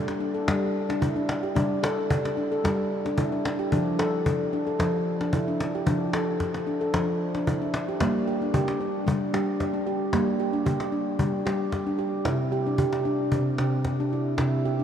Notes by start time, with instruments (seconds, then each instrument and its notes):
Already playing: handpan G3
0.08 cajon slap
0.20 handpan D4
0.34 handpan A4
0.48 handpan G3, cajon bass, cajon slap
0.89 handpan D4, cajon slap
1.01 handpan E4, cajon bass
1.16 handpan D4
1.29 cajon slap
1.43 handpan G4
1.55 handpan G3 D4, cajon bass
1.83 handpan A4, cajon slap
1.98 cajon slap
2.10 cajon bass
2.25 cajon slap
2.37 handpan D4
2.52 handpan A4
2.64 handpan G3, cajon bass, cajon slap
3.05 handpan D4, cajon slap
3.18 handpan E4, cajon bass
3.32 handpan D4
3.45 cajon slap
3.59 handpan G4
3.72 handpan F3 D4, cajon bass
3.99 handpan A4, cajon slap
4.14 cajon slap
4.26 cajon bass
4.53 handpan D4
4.67 handpan A4
4.79 handpan F3, cajon bass, cajon slap
5.21 handpan D4, cajon slap
5.33 handpan E4, cajon bass
5.48 handpan D4
5.60 cajon slap
5.75 handpan G4
5.86 handpan F3 D4, cajon bass
6.13 handpan A4, cajon slap
6.40 cajon bass, cajon slap
6.54 cajon slap
6.67 handpan D4
6.81 handpan A4
6.94 handpan F3, cajon bass, cajon slap
7.08 cajon slap
7.35 handpan D4, cajon slap
7.47 handpan E4, cajon bass
7.62 handpan D4
7.74 cajon slap
7.88 handpan G4
8.00 handpan G3 A#3, cajon bass, cajon slap
8.27 handpan G4
8.42 handpan D4, cajon slap
8.54 handpan G4, cajon bass
8.68 cajon slap
8.80 handpan D4
9.07 handpan G3, cajon bass
9.34 handpan G3 G4, cajon slap
9.60 cajon bass, cajon slap
9.74 handpan D4
9.87 handpan G4
10.13 handpan G3 A#3, cajon bass, cajon slap
10.40 handpan G4
10.53 handpan D4, cajon slap
10.66 handpan G4, cajon bass
10.80 cajon slap
10.92 handpan D4
11.19 handpan G3, cajon bass
11.46 handpan G3 G4, cajon slap
11.72 cajon bass, cajon slap
11.87 handpan D4
11.99 handpan G4
12.25 handpan C3 E4, cajon bass, cajon slap
12.52 handpan G4
12.66 handpan D4, cajon slap
12.78 handpan G4, cajon bass
12.93 cajon slap
13.05 handpan D4
13.32 handpan C3, cajon bass
13.58 handpan C3 G4, cajon slap
13.85 cajon bass, cajon slap
14.00 handpan D4
14.13 handpan E4
14.38 handpan C3 E4, cajon bass, cajon slap
14.65 handpan G4, cajon slap
14.79 handpan D4